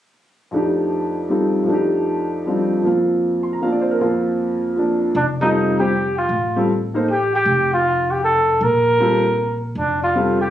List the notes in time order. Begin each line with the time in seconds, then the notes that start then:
0.51 F2 F3 A3 D4
0.55 D#4 G4
1.29 G3 C4 D#4 F4 A4
1.63 F2 F3
1.67 A3 D4
1.72 D#4 G4
2.46 F3 G3 C4 D4 F4
2.82 F2 F3 A#3
2.86 C4 F4
3.43 C6
3.53 A#5
3.61 A#3 C4 D4 F4 F5
3.72 D5
3.81 C5
3.91 A#4
4.00 F2 F3 A#3 C4 F4
4.76 F3 A#3 D4
5.15 F1 D4
5.41 G3 C4 D#4 F4 A4
5.79 G3 C4 F4 G4 C5
6.18 F4
6.29 A1
6.56 G3 C4 F4 A4
6.94 A#3 D#4 A4 C5
7.11 G4
7.36 G4
7.45 F1
7.73 F4
8.11 G4
8.24 A4
8.61 A#1 A#4
9.00 G3 C4 F4 A4
9.75 F1 D4
10.03 F4
10.15 G3 C4 F4 A4
10.41 G4